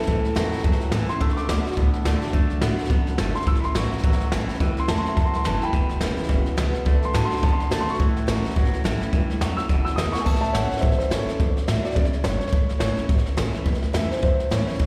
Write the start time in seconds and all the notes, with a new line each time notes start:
Already playing: A4
0.02 snare
0.07 C#2 A2 E3, kick, snare
0.24 muted upright bass stroke, snare
0.35 E2 A2 E3 F#3 A3 C#4 E4, snare, hi-hat pedal
0.52 C#4 E4, muted upright bass stroke, snare
0.58 snare
0.64 E2 F#2 A2 F#3, kick, snare
0.72 snare
0.80 snare
0.92 A2 E3 A3 C#4 E4, snare, hi-hat pedal
1.09 C#4 E4 C6, muted upright bass stroke, snare
1.20 D2 D3 A3 E6, kick, snare
1.29 C#6, snare
1.36 D2 D6, snare
1.45 D2 D3 C#6, snare, hi-hat pedal
1.49 A3 B3 D4 F#4 D6
1.65 D4 F#4, muted upright bass stroke, snare
1.72 snare
1.77 D2 A2 D3 B3, kick, snare
1.94 snare
2.05 D2 D3 A3 D4 F#4, snare, hi-hat pedal
2.22 D4 F#4, snare
2.27 snare
2.33 F#2 D3 A3, kick, snare
2.50 muted upright bass stroke, snare
2.61 A2 D3 A3 B3 D4 F#4, snare, hi-hat pedal
2.78 D4 F#4, muted upright bass stroke, snare
2.84 snare
2.90 F#2 B2 D3 B3, kick, snare
3.07 muted upright bass stroke, snare
3.18 G1 B2 D3 A3, snare, hi-hat pedal
3.35 C6, snare
3.41 snare
3.46 A1 A2 E3 E6, kick, snare
3.55 snare
3.60 A1 B5, snare
3.65 C6
3.71 A2 E3 C6
3.75 A1 F#3 A3 C#4 E4 C#6, snare, hi-hat pedal
3.91 C#4 E4, muted upright bass stroke, snare
3.98 snare
4.03 A1 E2 A2 F#3, kick, snare
4.12 snare
4.20 muted upright bass stroke, snare
4.32 A1 A2 E3 A3 C#4 E4, snare, hi-hat pedal
4.49 C#4 E4, muted upright bass stroke, snare
4.54 snare
4.60 C#2 A2 E3, kick, snare
4.77 C6, muted upright bass stroke, snare
4.88 E2 A2 E3 F#3 A3 C#4 E4 A5, snare, hi-hat pedal
4.98 C6
5.05 C6, muted upright bass stroke, snare
5.16 E2 F#2 A2 F#3 A5, kick, snare
5.26 C6
5.33 C6, muted upright bass stroke, snare
5.44 F#1 A2 E3 A3 C#4 E4 A5, snare, hi-hat pedal
5.54 C6
5.61 C#4 E4 G5 B5, muted upright bass stroke, snare
5.73 E1 E2 B2, kick, snare
5.89 E1, snare
6.01 E1 E2 C#3 E3 G#3 B3 E4, snare, hi-hat pedal
6.17 B3 E4, muted upright bass stroke, snare
6.23 snare
6.29 E1 E2 B2 C#3, kick, snare
6.46 snare
6.57 C#2 E2 B2 E3 G#3 B3 E4, snare, hi-hat pedal
6.74 muted upright bass stroke, snare
6.86 D2 D3 A3, kick, snare
7.02 C6, snare
7.13 A2 D3 A3 B3 D4 F#4 A5, snare, hi-hat pedal
7.25 C6
7.30 D4 F#4, muted upright bass stroke, snare
7.34 C6, snare
7.43 A2 B2 D3 B3 A5, kick, snare
7.53 C6
7.59 C6, muted upright bass stroke, snare
7.71 D3 A3 D4 F#4 A5, snare, hi-hat pedal
7.81 C6
7.88 D4 F#4 C#6, muted upright bass stroke, snare
7.94 snare
7.99 A1 A2 E3, kick, snare
8.16 A1, snare
8.27 A1 A2 E3 F#3 A3 C#4 E4, snare, hi-hat pedal
8.44 C#4 E4, muted upright bass stroke, snare
8.50 snare
8.56 A1 E2 A2 F#3, kick, snare
8.65 snare
8.72 muted upright bass stroke, snare
8.84 A1 A2 E3 A3 C#4 E4, snare, hi-hat pedal
9.00 C#4 E4, muted upright bass stroke, snare
9.13 C#2 G2 A2 E3, kick, snare
9.29 muted upright bass stroke, snare
9.41 E2 F#2 A2 F#3, snare, hi-hat pedal
9.57 E6, muted upright bass stroke, snare
9.69 E1 E2 B2, kick, snare
9.85 E6, muted upright bass stroke, snare
9.96 E2 B2 E3 G#3 B3 E4 D#6, snare, hi-hat pedal
10.12 B3 E4 C#6, muted upright bass stroke, snare
10.20 G#5
10.25 A1 A2 E5 A5, kick, snare, crash
10.35 snare
10.41 A1 E5 A5, snare
10.52 A1 E3 A3 C#4 E4 C#5 F#5, snare, hi-hat pedal
10.70 C#4 E4 C#5 F#5, muted upright bass stroke, snare
10.77 C5 E5, snare
10.82 A1 E2, kick, snare
10.92 snare
10.98 C5 E5, snare
11.10 A1 E3 A3 C#4 E4 A4 C#5, snare, hi-hat pedal
11.27 C#4 E4, muted upright bass stroke, snare
11.40 D2 D3, kick, snare
11.56 muted upright bass stroke, snare
11.68 A2 D3 A3 D4 F#4 E5, snare, hi-hat pedal
11.80 C#5
11.85 D4 F#4 D5, muted upright bass stroke, snare
11.91 snare
11.95 B2 C#3 D5, kick, snare
12.05 snare
12.13 muted upright bass stroke, snare
12.24 G1 G2 C#5, snare, hi-hat pedal
12.40 C#5, muted upright bass stroke, snare
12.47 snare
12.52 A1 A2, kick, snare
12.69 A1, snare
12.79 A1 E3 A3 C#4 E4 C#5, snare, hi-hat pedal
12.97 C#4 E4, muted upright bass stroke, snare
13.09 A1 E2, kick, snare
13.17 snare
13.26 snare
13.37 A1 E3 A3 C#4 E4, snare, hi-hat pedal
13.53 C#4 E4, muted upright bass stroke, snare
13.66 C#2 A2, kick, snare
13.74 snare
13.82 muted upright bass stroke, snare
13.93 E2 E3 A3 C#4 E4 E5, snare, hi-hat pedal
14.07 B4
14.11 C5, muted upright bass stroke, snare
14.17 snare
14.22 E2 F#2 C5, kick, snare
14.40 snare
14.51 A2 E3 A3 C#4 E4 C#5, snare, hi-hat pedal
14.67 C#4 E4 C#5, muted upright bass stroke, snare
14.74 snare
14.79 D2 D3, kick, snare